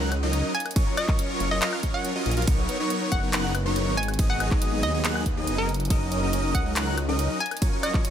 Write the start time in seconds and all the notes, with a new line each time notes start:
Already playing: C#2
0.01 A#5
0.12 C#5, closed hi-hat, high woodblock
0.23 F#3 C#4 D#4 A#4 D#5 D#6
0.33 C#5, closed hi-hat
0.44 D#4
0.55 F5 G#5, closed hi-hat
0.60 closed hi-hat
0.66 A#4, closed hi-hat, high woodblock
0.71 closed hi-hat
0.76 F#3 C#4 F4 A#4 C#5 C#6, kick, closed hi-hat, ride
0.87 A#5
0.97 C#5 D#5, closed hi-hat, high woodblock
1.08 F#3 C#4 F4 A#4 C#5 C#6, kick, clap
1.19 C#5, closed hi-hat
1.30 F4
1.40 F#1 F5, closed hi-hat
1.51 F#3 C#4 F4 A#4 C#5 D#5 C#6
1.62 F#3 C#4 F4 A#4 D#5 F5 F6, clap, closed hi-hat, ride
1.73 A#5, high woodblock
1.83 F#3 C#4 F4 A#4 C#5 F5 C#6, kick, closed hi-hat
1.94 C#5 F#5
2.05 F4, closed hi-hat
2.16 F#3 C#4 F4 F#4 A#4 D#5 D#6
2.26 A#1 F4, closed hi-hat
2.31 closed hi-hat
2.37 F#3 C#4 F4 F#4 A#4 F5 F6, closed hi-hat
2.42 closed hi-hat
2.47 B1 F#3 B3 D#4 A#4 C#5 C#6, kick, closed hi-hat, ride
2.58 F#5
2.69 B4, closed hi-hat
2.80 F#3 B3 D#4 A#4 C#5 C#6
2.90 B4, closed hi-hat
3.02 D#4
3.12 F#1 C#5 F#5, kick, closed hi-hat
3.23 F#3 B3 D#4 A#4 C#5 C#6
3.33 F#3 B3 D#4 A#4 F#5 F#6, clap, closed hi-hat, ride
3.44 F#5
3.55 B4, closed hi-hat, high woodblock
3.66 F#3 B3 D#4 A#4 C#5 C#6
3.76 B4, closed hi-hat
3.87 G#1 D#4
3.97 D#5 G#5, closed hi-hat
4.03 closed hi-hat
4.08 G#4, closed hi-hat, high woodblock
4.14 closed hi-hat
4.19 F#3 B3 D#4 G#4 D#5 D#6, kick, closed hi-hat, ride
4.30 F#5 G#5
4.40 B4, closed hi-hat, high woodblock
4.51 F#3 B3 D#4 G#4 D#5 D#6, kick, clap
4.62 B4, closed hi-hat
4.73 D#4
4.83 D#2 D#5, closed hi-hat
4.94 F#3 B3 D#4 G#4 D#5 D#6
5.05 F#3 B3 D#4 G#4 F#5 F#6, clap, closed hi-hat, ride
5.16 G#5, high woodblock
5.26 D#2 B4, kick, closed hi-hat
5.37 F#3 B3 D#4 G#4 D#5 D#6
5.47 F#1 B4, closed hi-hat
5.58 D#4 A#4
5.69 D#5, closed hi-hat
5.74 closed hi-hat
5.80 A#4, closed hi-hat
5.85 closed hi-hat
5.90 F#3 C#4 D#4 A#4 D#5 D#6, kick, closed hi-hat, ride
6.01 A#5
6.12 C#5, closed hi-hat
6.23 F#3 C#4 D#4 A#4 D#5 D#6
6.33 C#5, closed hi-hat
6.44 D#4
6.55 C#2 D#5 F#5, kick, closed hi-hat
6.66 F#3 C#4 D#4 A#4 D#5 D#6
6.76 F#3 C#4 D#4 A#4 F#5 F#6, clap, closed hi-hat, ride
6.87 A#5
6.97 C#5, closed hi-hat, high woodblock
7.08 F#3 C#4 D#4 A#4 D#5 D#6
7.19 C#5, closed hi-hat
7.30 D#4
7.40 F5 G#5, closed hi-hat
7.46 closed hi-hat
7.51 A#4, closed hi-hat, high woodblock
7.57 closed hi-hat
7.62 F#3 C#4 F4 A#4 C#5 C#6, kick, closed hi-hat, ride
7.73 A#5
7.83 C#5 D#5, closed hi-hat, high woodblock
7.94 F#3 C#4 F4 A#4 C#5 C#6, kick, clap
8.05 C#5, closed hi-hat